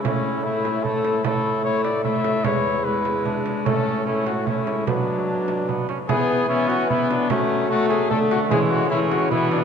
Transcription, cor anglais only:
X:1
M:3/4
L:1/8
Q:1/4=149
K:Emix
V:1 name="Cor anglais"
E2 E2 E2 | E2 E2 E2 | E2 E2 D2 | C2 C2 C2 |
B,2 D2 B, C | B,2 C2 B,2 | A,2 A,4 | G,2 C2 B,2 |]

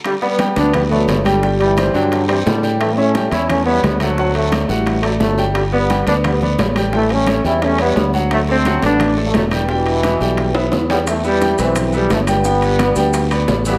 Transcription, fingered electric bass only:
X:1
M:4/4
L:1/8
Q:1/4=174
K:G
V:1 name="Fingered electric bass" clef=bass
z3 D,,3 G,,,2- | G,,,3 G,,3 A,,2- | A,,3 E,,3 D,,2- | D,,3 A,,,3 G,,,2- |
G,,,3 D,,3 A,,,2- | A,,,3 E,,3 D,,2- | D,,3 A,,,3 E,,,2- | E,,,3 B,,,3 E,,2- |
E,,3 B,,,3 G,,,2- | G,,,3 D,,3 A,,,2 |]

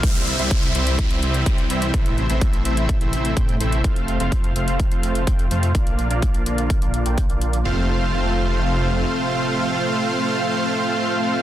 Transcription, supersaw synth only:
X:1
M:4/4
L:1/16
Q:1/4=126
K:F
V:1 name="Supersaw synth"
[G,CEce]3 [G,CEce]3 [G,CEce]3 [G,CEce]3 [G,CEcg]2 [G,CEce]2 | [A,CEce]3 [A,CEce]3 [A,CEce]3 [A,CEce]3 [A,CEcg]2 [A,CEce]2 | [A,CFcf]3 [A,CFcf]3 [A,CFcf]3 [A,CFcf]3 [A,CFcg]2 [A,CFcf]2 | [B,DFdf]3 [B,DFdf]3 [B,DFdf]3 [B,DFdf]2 [B,DFdg]2 [B,DFdf]2 z |
[A,CFcf]16- | [A,CFcf]16 |]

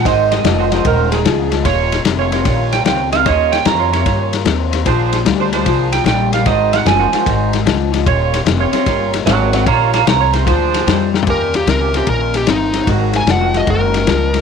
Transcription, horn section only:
X:1
M:4/4
L:1/16
Q:"Swing" 1/4=150
K:Ebmix
V:1 name="Horn section"
[_GBc]3 z2 [GBc] [GBc]4- [GBc] z4 z | [FGd]3 z2 [FGd] [FGd]4- [FGd] z4 z | [FGd]3 z2 [FGd] [FGd]4- [FGd] z4 z | [=DAc]3 z2 [DAc] [DAc]4- [DAc] z4 z |
[_GBc]3 z2 [GBc] [GBc]4- [GBc] z4 z | [FGd]3 z2 [FGd] [FGd]4- [FGd] z4 z | [FGd]3 z2 [FGd] [FGc]2 [=DAc]6 z2 | [DFG]3 z2 [DFG] [DFB]4- [DFB] z4 z |
[B,C_G]3 z2 [B,CG] [B,CG]4- [B,CG] z4 z |]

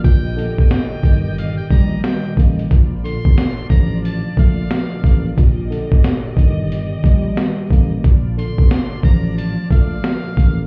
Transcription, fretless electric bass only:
X:1
M:4/4
L:1/16
Q:"Swing 16ths" 1/4=90
K:Bb
V:1 name="Fretless electric bass" clef=bass
B,,,3 G,,, z2 G,,,4 B,,,2 z2 A,,,2 | B,,,3 A,,, z2 A,,,4 B,,,2 z2 A,,,2 | B,,,3 G,,, z2 G,,,4 B,,,2 z2 A,,,2 | B,,,3 A,,, z2 A,,,4 B,,,2 z2 A,,,2 |]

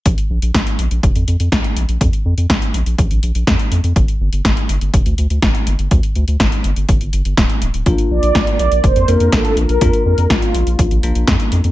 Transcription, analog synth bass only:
X:1
M:4/4
L:1/16
Q:1/4=123
K:Bb
V:1 name="Analog synth bass" clef=bass
B,,, z B,,, B,,, B,,, z B,,, B,,, F,,, F,, F,, F,, B,,, z B,,, B,,, | F,, z F,, F,, B,,, z B,,, B,,, B,,, B,,, B,,, B,,, F,, z F,, F,, | G,,, z G,,, G,,, G,,, z G,,, G,,, F,,, D,, D,, D,, G,,, z G,,, G,,, | D,, z D,, D,, G,,, z G,,, G,,, G,,, G,,, G,,, G,,, D,,, z D,,, D,,, |
B,,, z B,,, B,,, B,,, z B,,, B,,, F,,, F,, F,, F,, B,,, z B,,, B,,, | F,, z F,, F,, B,,, z B,,, B,,, B,,, B,,, B,,, B,,, F,, z F,, F,, |]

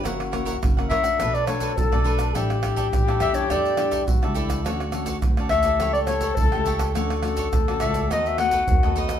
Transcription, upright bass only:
X:1
M:4/4
L:1/16
Q:1/4=104
K:D
V:1 name="Upright bass" clef=bass
F,,,4 F,,,2 F,,2 B,,,4 B,,, B,,,3 | A,,,4 A,,,2 E,,2 E,,4 A,,, C,,3 | D,,4 D,,2 D,,2 C,,4 C,, C,,3 | D,,4 D,,2 C,,2 ^D,,4 D,, D,,3 |]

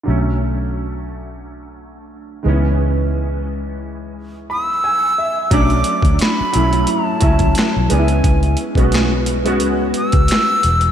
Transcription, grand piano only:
X:1
M:4/4
L:1/16
Q:"Swing 16ths" 1/4=88
K:Bdor
V:1 name="Grand piano"
z16 | z8 z2 b2 g2 e2 | z16 | z16 |]
V:2 name="Grand piano"
[D,F,A,C]12- [D,F,A,C]2 [^D,E,G,B,C]2- | [^D,E,G,B,C]12- [D,E,G,B,C]2 z2 | [F,A,CD]4- [F,A,CD] z [F,A,CE] [F,A,CE]2 z [F,A,CE]4 [G,B,CDE]2- | [G,B,CDE]2 z [G,B,CF]3 z [G,B,CF]6 z3 |]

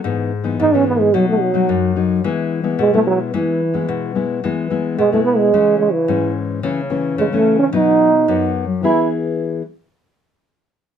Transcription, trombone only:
X:1
M:4/4
L:1/16
Q:1/4=109
K:E
V:1 name="Trombone" clef=bass
z4 D C B, G, F, A, F,4 z2 | z4 G, A, F,2 E,6 z2 | z4 G, A, B, G,3 G, E,3 z2 | z4 G, A,2 C D6 z2 |
E2 z12 z2 |]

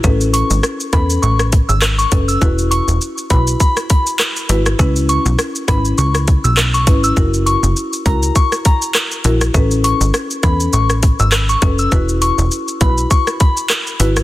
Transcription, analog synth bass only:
X:1
M:4/4
L:1/16
Q:"Swing 16ths" 1/4=101
K:Alyd
V:1 name="Analog synth bass" clef=bass
A,,,3 G,,, z2 E,,2 A,,,3 G,,,3 F,,,2 | E,,,3 E,,, z2 B,,,2 z6 G,,,2 | C,,3 B,,, z2 G,,,2 C,,3 B,,,3 G,,,2 | F,,,3 F,,, z2 C,,2 z6 ^A,,,2 |
A,,,3 G,,, z2 E,,2 A,,,3 G,,,3 F,,,2 | E,,,3 E,,, z2 B,,,2 z6 G,,,2 |]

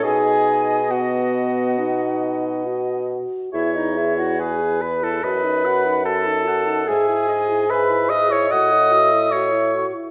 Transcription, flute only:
X:1
M:4/4
L:1/16
Q:1/4=72
K:E
V:1 name="Flute"
g4 f8- f2 z2 | e d e f g2 b a b4 a4 | g4 b2 d' c' d'4 c'3 z |]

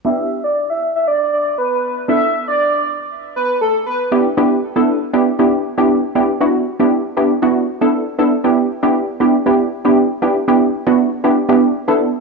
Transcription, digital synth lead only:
X:1
M:4/4
L:1/16
Q:1/4=118
K:Em
V:1 name="Digital synth lead"
e2 z d z e z e d2 d z B3 z | e2 z d3 z4 B2 A z B z | z16 | z16 |
z16 | z16 |]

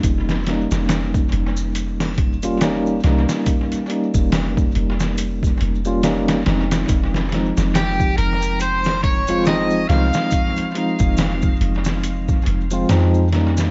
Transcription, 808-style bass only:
X:1
M:4/4
L:1/16
Q:"Swing 16ths" 1/4=70
K:Fm
V:1 name="808-style bass" clef=bass
F,,,3 F,,,3 F,,,8 C,, z | z3 F,,,3 F,,,4 F,,,4 F,,,2 | F,,,3 F,,,3 F,,,8 C,, z | z3 F,,,3 F,,,4 F,,,2 F,,4 |]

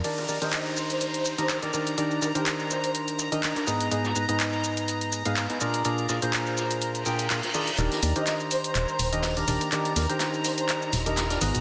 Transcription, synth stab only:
X:1
M:4/4
L:1/16
Q:"Swing 16ths" 1/4=124
K:Eb
V:1 name="Synth stab"
[E,DEGBd]2 [E,DEGBd] [E,DEGBc]8 [E,DEGBe]2 [E,DEGBd] [E,DEGBd]2 | [E,DEGBd]2 [E,DEGBd] [E,DEGBc]8 [E,DEGBe]2 [DEGBd] [A,,_CEA_ce]2 | [A,,_CEA_ce]2 [A,,CEAce] [A,,CEAce]8 [A,,CEAcf]2 [CEAce] [B,,DFABd]2 | [B,,DFABd]2 [B,,DFABd] [B,,DFABc]6- [B,,DFABc] [B,,DFABg]2 [B,,DFABf] z [E,DFABd] z |
[E,DEGBd]2 [E,DEGBd] [E,DEGBc]8 [E,DEGBe]2 [E,DEGBd] [E,DEGBd]2 | [E,DEGBd]2 [E,DEGBd] [E,DEGBc]8 [E,DEGBe]2 [DEGBd] [A,,_CEA_ce]2 |]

